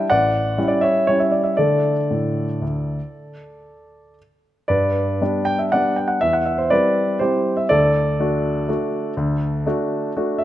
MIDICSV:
0, 0, Header, 1, 2, 480
1, 0, Start_track
1, 0, Tempo, 487805
1, 105, Time_signature, 3, 2, 24, 8
1, 1552, Tempo, 517241
1, 5392, Tempo, 492207
1, 10002, End_track
2, 0, Start_track
2, 0, Title_t, "Grand piano"
2, 0, Program_c, 0, 0
2, 95, Note_on_c, 0, 78, 80
2, 101, Note_on_c, 0, 74, 62
2, 109, Note_on_c, 0, 33, 55
2, 277, Control_c, 0, 64, 127
2, 557, Note_off_c, 0, 33, 0
2, 572, Note_on_c, 0, 61, 41
2, 573, Note_on_c, 0, 55, 43
2, 575, Note_on_c, 0, 64, 46
2, 577, Control_c, 0, 64, 0
2, 647, Note_off_c, 0, 74, 0
2, 669, Note_on_c, 0, 74, 58
2, 684, Note_off_c, 0, 78, 0
2, 800, Note_on_c, 0, 76, 71
2, 801, Note_off_c, 0, 74, 0
2, 818, Note_on_c, 0, 73, 53
2, 1020, Note_off_c, 0, 55, 0
2, 1020, Note_off_c, 0, 61, 0
2, 1021, Note_off_c, 0, 64, 0
2, 1040, Note_off_c, 0, 73, 0
2, 1052, Note_off_c, 0, 76, 0
2, 1055, Note_on_c, 0, 73, 66
2, 1071, Note_on_c, 0, 55, 37
2, 1081, Note_on_c, 0, 64, 42
2, 1082, Note_on_c, 0, 61, 34
2, 1177, Note_on_c, 0, 76, 53
2, 1180, Note_off_c, 0, 73, 0
2, 1294, Note_on_c, 0, 74, 48
2, 1303, Note_off_c, 0, 76, 0
2, 1413, Note_on_c, 0, 76, 51
2, 1423, Note_off_c, 0, 74, 0
2, 1519, Note_off_c, 0, 55, 0
2, 1524, Note_off_c, 0, 61, 0
2, 1524, Note_off_c, 0, 64, 0
2, 1543, Note_on_c, 0, 74, 61
2, 1544, Note_off_c, 0, 76, 0
2, 1558, Note_on_c, 0, 69, 49
2, 1559, Note_on_c, 0, 50, 42
2, 1562, Note_on_c, 0, 57, 35
2, 1566, Note_on_c, 0, 62, 33
2, 1732, Control_c, 0, 64, 127
2, 1890, Note_off_c, 0, 50, 0
2, 1939, Note_off_c, 0, 57, 0
2, 1942, Note_off_c, 0, 62, 0
2, 2043, Note_on_c, 0, 45, 41
2, 2384, Note_off_c, 0, 45, 0
2, 2515, Note_on_c, 0, 38, 39
2, 2530, Control_c, 0, 64, 0
2, 2850, Note_off_c, 0, 38, 0
2, 3169, Control_c, 0, 64, 127
2, 3926, Note_off_c, 0, 69, 0
2, 3956, Note_off_c, 0, 74, 0
2, 3967, Control_c, 0, 64, 0
2, 4430, Note_on_c, 0, 74, 66
2, 4435, Note_on_c, 0, 71, 50
2, 4446, Note_on_c, 0, 43, 45
2, 4611, Control_c, 0, 64, 127
2, 4903, Note_off_c, 0, 43, 0
2, 4928, Note_on_c, 0, 55, 39
2, 4928, Note_on_c, 0, 59, 38
2, 4929, Control_c, 0, 64, 0
2, 4933, Note_on_c, 0, 62, 43
2, 5113, Note_off_c, 0, 71, 0
2, 5146, Note_on_c, 0, 79, 75
2, 5147, Note_off_c, 0, 74, 0
2, 5269, Note_off_c, 0, 79, 0
2, 5273, Note_on_c, 0, 76, 49
2, 5361, Note_off_c, 0, 55, 0
2, 5361, Note_off_c, 0, 59, 0
2, 5363, Note_off_c, 0, 62, 0
2, 5392, Note_off_c, 0, 76, 0
2, 5396, Note_on_c, 0, 78, 70
2, 5407, Note_on_c, 0, 74, 52
2, 5410, Note_on_c, 0, 55, 35
2, 5418, Note_on_c, 0, 59, 35
2, 5420, Note_on_c, 0, 62, 38
2, 5630, Note_off_c, 0, 74, 0
2, 5634, Note_on_c, 0, 79, 55
2, 5642, Note_off_c, 0, 78, 0
2, 5744, Note_on_c, 0, 78, 54
2, 5757, Note_off_c, 0, 79, 0
2, 5848, Note_off_c, 0, 55, 0
2, 5852, Note_off_c, 0, 59, 0
2, 5853, Note_off_c, 0, 62, 0
2, 5870, Note_off_c, 0, 78, 0
2, 5873, Note_on_c, 0, 76, 78
2, 5888, Note_on_c, 0, 40, 45
2, 5993, Note_off_c, 0, 76, 0
2, 5994, Note_on_c, 0, 78, 53
2, 6046, Control_c, 0, 64, 127
2, 6113, Note_off_c, 0, 78, 0
2, 6114, Note_on_c, 0, 76, 56
2, 6234, Note_off_c, 0, 76, 0
2, 6235, Note_on_c, 0, 72, 53
2, 6346, Note_off_c, 0, 40, 0
2, 6355, Note_on_c, 0, 74, 72
2, 6356, Note_off_c, 0, 72, 0
2, 6361, Note_on_c, 0, 71, 57
2, 6366, Control_c, 0, 64, 0
2, 6370, Note_on_c, 0, 55, 38
2, 6375, Note_on_c, 0, 60, 40
2, 6379, Note_on_c, 0, 64, 41
2, 6813, Note_off_c, 0, 55, 0
2, 6814, Note_off_c, 0, 71, 0
2, 6816, Note_off_c, 0, 60, 0
2, 6818, Note_off_c, 0, 64, 0
2, 6833, Note_on_c, 0, 72, 67
2, 6845, Note_off_c, 0, 74, 0
2, 6849, Note_on_c, 0, 67, 52
2, 6850, Note_on_c, 0, 55, 37
2, 6857, Note_on_c, 0, 60, 37
2, 6857, Note_on_c, 0, 64, 39
2, 7183, Note_off_c, 0, 67, 0
2, 7199, Note_on_c, 0, 76, 54
2, 7201, Note_off_c, 0, 72, 0
2, 7288, Note_off_c, 0, 55, 0
2, 7291, Note_off_c, 0, 60, 0
2, 7291, Note_off_c, 0, 64, 0
2, 7319, Note_on_c, 0, 74, 77
2, 7320, Note_off_c, 0, 76, 0
2, 7333, Note_on_c, 0, 69, 58
2, 7336, Note_on_c, 0, 38, 48
2, 7525, Control_c, 0, 64, 127
2, 7793, Note_off_c, 0, 38, 0
2, 7814, Note_on_c, 0, 57, 39
2, 7815, Note_on_c, 0, 62, 41
2, 7821, Note_on_c, 0, 66, 43
2, 8251, Note_off_c, 0, 57, 0
2, 8252, Note_off_c, 0, 62, 0
2, 8255, Note_off_c, 0, 66, 0
2, 8290, Note_on_c, 0, 57, 41
2, 8290, Note_on_c, 0, 62, 38
2, 8295, Control_c, 0, 64, 0
2, 8297, Note_on_c, 0, 66, 43
2, 8719, Note_off_c, 0, 57, 0
2, 8719, Note_off_c, 0, 62, 0
2, 8722, Note_off_c, 0, 66, 0
2, 8760, Note_on_c, 0, 38, 54
2, 8933, Control_c, 0, 64, 127
2, 9216, Note_off_c, 0, 38, 0
2, 9237, Control_c, 0, 64, 0
2, 9243, Note_on_c, 0, 62, 44
2, 9245, Note_on_c, 0, 57, 47
2, 9252, Note_on_c, 0, 66, 50
2, 9682, Note_off_c, 0, 57, 0
2, 9682, Note_off_c, 0, 62, 0
2, 9686, Note_off_c, 0, 66, 0
2, 9732, Note_on_c, 0, 66, 47
2, 9733, Note_on_c, 0, 57, 43
2, 9734, Note_on_c, 0, 62, 41
2, 9917, Note_off_c, 0, 69, 0
2, 9946, Note_on_c, 0, 76, 63
2, 9950, Note_off_c, 0, 74, 0
2, 10002, Note_off_c, 0, 57, 0
2, 10002, Note_off_c, 0, 62, 0
2, 10002, Note_off_c, 0, 66, 0
2, 10002, Note_off_c, 0, 76, 0
2, 10002, End_track
0, 0, End_of_file